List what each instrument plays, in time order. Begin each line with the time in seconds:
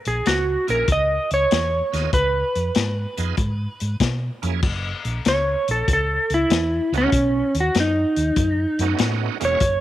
0.05 fingered electric bass A#1, electric slide guitar G#4, closed hi-hat
0.26 fingered electric bass C#2, electric slide guitar F#4, snare, closed hi-hat
0.67 fingered electric bass A#1, tonewheel organ A#3 C#4 E4 G#4, electric slide guitar A#4, closed hi-hat
0.88 fingered electric bass C#2, kick, closed hi-hat
0.92 electric slide guitar D#5
1.30 fingered electric bass C#2, electric slide guitar C#5, closed hi-hat
1.51 fingered electric bass E2, snare, closed hi-hat
1.92 fingered electric bass D#2, tonewheel organ B3 D#4 F4 G#4, snare, closed hi-hat
2.13 fingered electric bass C#2, electric slide guitar B4, kick, closed hi-hat
2.55 fingered electric bass F2, closed hi-hat
2.75 fingered electric bass G#2, snare, closed hi-hat
3.17 fingered electric bass F2, tonewheel organ B3 D#4 F4 G#4, closed hi-hat
3.37 fingered electric bass G#2, kick, closed hi-hat
3.80 fingered electric bass G#2, closed hi-hat
4.00 fingered electric bass B2, kick, snare, closed hi-hat
4.42 fingered electric bass F2, tonewheel organ F#2 A#3 C#4 E4 G#4, closed hi-hat
4.62 fingered electric bass F#1, kick, crash
5.05 fingered electric bass A#1, closed hi-hat
5.25 fingered electric bass C#2, electric slide guitar C#5, snare, closed hi-hat
5.68 fingered electric bass A#1, electric slide guitar A4, closed hi-hat
5.88 fingered electric bass C#2, kick, closed hi-hat
5.93 electric slide guitar A4
6.30 fingered electric bass C#2, closed hi-hat
6.34 electric slide guitar E4
6.50 fingered electric bass E2, snare, closed hi-hat
6.92 fingered electric bass C#2, tonewheel organ A3 B3 C#4 D#4 F#4, closed hi-hat
6.98 electric slide guitar C#4
7.12 fingered electric bass B1, kick, closed hi-hat
7.55 fingered electric bass D#2, closed hi-hat
7.60 electric slide guitar F#4
7.74 fingered electric bass F#2, snare, closed hi-hat
7.80 electric slide guitar D#4
8.16 fingered electric bass D#2, closed hi-hat
8.36 fingered electric bass F#2, kick, closed hi-hat
8.79 fingered electric bass F#2, tonewheel organ A3 B3 C#4 D#4 F#4, closed hi-hat
8.98 fingered electric bass A2, snare, closed hi-hat
9.40 fingered electric bass E1, tonewheel organ G#3 A#3 C#4 E4 F#4, closed hi-hat
9.45 electric slide guitar C#5
9.60 fingered electric bass F#1, kick, closed hi-hat